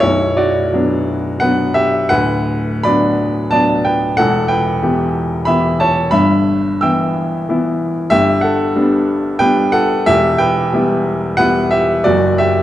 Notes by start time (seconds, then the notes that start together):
0.00 B0 B1 E4 C#5
0.37 F#4 D5
0.74 F#3 B3 D4
1.40 F#3 B3 D4 B4 F#5
1.74 G4 E5
2.09 D1 D2 B4 F#5
2.83 F#3 B3 D4 D5 B5
3.51 F#3 B3 D4 D5 A5
3.85 B4 G5
4.17 E1 E2 A4 F#5
4.48 B4 G5
4.82 E3 B3 G4
5.45 E3 B3 G4 E5 B5
5.80 C#5 A5
6.11 G1 G2 E5 B5
6.81 E3 B3 E4 G5 E6
7.49 E3 B3 E4
8.10 G1 G2 G4 E5
8.41 A4 F#5
8.76 G3 B3 D4
9.39 G3 B3 D4 B4 G5
9.72 A4 F#5
10.06 E1 E2 G4 E5
10.38 B4 G5
10.73 G3 B3 E4
11.37 G3 B3 E4 B4 F#5
11.71 G4 E5
12.04 F#1 F#2 F#4 D5
12.38 G4 E5